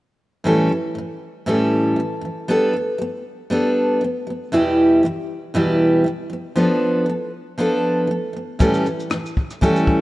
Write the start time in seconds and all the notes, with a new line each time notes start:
0.44 A2 E3 G3 C#4 A4
0.69 A2 E3
0.95 A2 E3
1.46 A2 E3 G3 C#4 A4
1.96 A2 E3
2.21 A2 E3
2.48 G3 B3 D4 A4
2.73 G3 B3
2.98 G3 B3
3.50 G3 B3 D4 A4
4.01 G3 B3
4.27 G3 B3
4.52 E2 B2 E3 G3 E4 G4
5.03 E2 B2 E3
5.54 E2 B2 E3 G3 E4 G4
6.04 E2 B2 E3
6.30 F3 B3
6.56 F3 B3 D4 A4
7.06 F3 B3
7.58 F3 B3 D4 A4
8.07 F3 B3
8.33 F3 B3
8.59 A2 E3 G3 C#4 A4, kick, shaker
8.74 shaker
8.84 A2 E3, shaker
9.00 shaker
9.10 A2 E3, cross-stick, shaker
9.26 shaker
9.37 kick
9.50 cross-stick, shaker
9.61 A2 E3 G3 C#4 A4, kick, shaker
9.76 shaker
9.87 kick